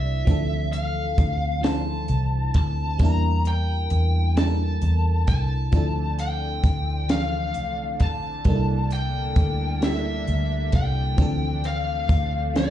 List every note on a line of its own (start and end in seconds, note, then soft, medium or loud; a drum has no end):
0.00 0.24 C2 medium
0.00 0.29 G3 medium
0.00 0.29 A#3 medium
0.00 0.28 D4 medium
0.00 0.29 E4 medium
0.00 0.29 C5 medium
0.00 0.72 E5 loud
0.25 1.14 D2 loud
0.25 1.28 F3 medium
0.25 1.29 C4 medium
0.25 1.30 D4 medium
0.25 kick loud
0.25 closed hi-hat medium
0.29 1.30 E3 medium
0.29 1.31 A4 medium
0.73 1.60 F5 loud
0.73 closed hi-hat medium
1.18 2.05 D2 loud
1.18 kick loud
1.18 closed hi-hat medium
1.61 2.64 F3 medium
1.61 2.65 C4 medium
1.61 2.66 D4 medium
1.61 2.51 A5 medium
1.61 snare loud
1.61 closed hi-hat medium
1.66 2.67 E4 medium
1.66 2.67 C5 medium
2.08 2.51 C2 medium
2.08 closed hi-hat medium
2.54 2.96 D2 medium
2.54 2.98 A5 loud
2.54 kick loud
2.54 closed hi-hat medium
2.98 3.87 E2 loud
2.98 4.01 G3 medium
2.98 4.02 A#3 medium
2.98 4.03 D4 medium
2.98 3.47 A#5 loud
2.98 kick loud
2.98 closed hi-hat medium
3.03 4.03 E4 medium
3.03 4.04 A#4 loud
3.45 4.37 G5 loud
3.45 closed hi-hat medium
3.90 4.78 E2 loud
3.90 closed hi-hat medium
4.35 5.38 G3 medium
4.35 5.38 A#3 medium
4.35 5.39 D4 medium
4.35 5.27 A5 loud
4.35 snare loud
4.35 closed hi-hat medium
4.39 5.40 E4 medium
4.39 4.45 A4 medium
4.47 5.44 A#4 medium
4.82 5.24 E2 medium
4.82 closed hi-hat medium
5.27 5.69 C2 medium
5.27 6.20 A5 loud
5.27 kick medium
5.27 closed hi-hat medium
5.71 6.60 D2 loud
5.71 12.70 D3 medium
5.71 6.74 F3 medium
5.71 8.42 A3 medium
5.71 8.42 C4 medium
5.71 6.75 C4 medium
5.71 12.70 D4 medium
5.71 6.76 D4 medium
5.71 kick loud
5.71 closed hi-hat medium
5.76 6.76 E4 medium
5.76 6.77 A4 loud
6.19 7.13 G5 loud
6.19 closed hi-hat medium
6.64 7.56 D2 medium
6.64 kick loud
6.64 closed hi-hat medium
7.08 8.11 F3 medium
7.08 8.11 C4 medium
7.08 8.12 D4 medium
7.08 8.03 F5 medium
7.08 snare loud
7.08 closed hi-hat medium
7.13 8.13 E3 medium
7.13 8.14 A4 medium
7.54 8.01 C2 loud
7.54 closed hi-hat medium
8.00 8.42 A#1 medium
8.00 8.88 A5 loud
8.00 kick medium
8.00 closed hi-hat medium
8.45 9.33 C2 loud
8.45 9.47 G3 medium
8.45 9.47 A#3 medium
8.45 11.16 A#3 medium
8.45 9.48 D4 medium
8.45 11.15 A4 medium
8.45 kick loud
8.45 closed hi-hat medium
8.49 8.54 D#4 medium
8.49 9.50 A4 loud
8.55 9.52 E4 medium
8.91 9.86 G5 loud
8.91 closed hi-hat medium
9.36 10.23 D2 medium
9.36 kick loud
9.36 closed hi-hat medium
9.81 10.83 G3 medium
9.81 10.84 A#3 medium
9.81 10.85 D4 medium
9.81 10.77 E5 loud
9.81 snare loud
9.81 closed hi-hat medium
9.85 10.85 E4 medium
9.85 9.90 G4 medium
9.93 10.89 A4 medium
10.27 10.69 D2 medium
10.27 closed hi-hat soft
10.72 11.15 C2 medium
10.72 11.67 G5 loud
10.72 kick loud
10.72 closed hi-hat medium
11.17 12.05 D2 loud
11.17 12.21 E3 medium
11.17 12.19 F3 medium
11.17 12.70 A3 medium
11.17 12.20 C4 medium
11.17 12.70 C4 medium
11.17 12.20 D4 medium
11.17 kick loud
11.17 closed hi-hat medium
11.22 12.22 A4 loud
11.64 12.57 F5 loud
11.64 closed hi-hat medium
12.09 12.70 D2 medium
12.09 kick loud
12.09 closed hi-hat medium
12.54 12.70 F3 medium
12.54 12.70 C4 medium
12.54 12.70 D4 medium
12.54 12.70 D5 loud
12.54 snare loud
12.54 closed hi-hat medium
12.58 12.70 E3 medium
12.58 12.70 A4 medium